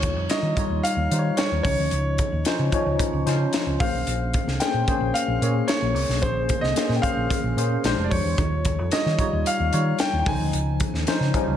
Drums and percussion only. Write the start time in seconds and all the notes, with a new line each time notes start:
0.03 kick, closed hi-hat
0.30 snare, closed hi-hat
0.57 kick, closed hi-hat
0.85 closed hi-hat
1.12 closed hi-hat
1.37 snare, closed hi-hat
1.65 kick, open hi-hat
1.91 closed hi-hat
2.18 kick, closed hi-hat
2.45 snare, closed hi-hat
2.72 kick, closed hi-hat
2.99 kick, closed hi-hat
3.27 snare, closed hi-hat
3.53 snare, closed hi-hat
3.80 kick, open hi-hat
4.07 closed hi-hat
4.34 kick, closed hi-hat
4.48 snare
4.60 snare, closed hi-hat
4.88 kick, closed hi-hat
5.15 closed hi-hat
5.42 closed hi-hat
5.68 snare, closed hi-hat
5.96 open hi-hat
6.10 snare
6.22 kick, closed hi-hat
6.49 kick, closed hi-hat
6.64 snare
6.76 snare, closed hi-hat
6.91 snare
7.03 kick, closed hi-hat
7.30 kick, closed hi-hat
7.58 closed hi-hat
7.84 snare, closed hi-hat
8.11 kick, open hi-hat
8.38 kick, closed hi-hat
8.65 kick, closed hi-hat
8.92 snare, closed hi-hat
9.06 snare
9.19 kick, closed hi-hat
9.46 closed hi-hat
9.73 closed hi-hat
9.99 snare, closed hi-hat
10.26 kick, open hi-hat
10.53 closed hi-hat
10.80 kick, closed hi-hat
10.95 snare
11.07 snare, closed hi-hat
11.22 snare
11.34 kick, closed hi-hat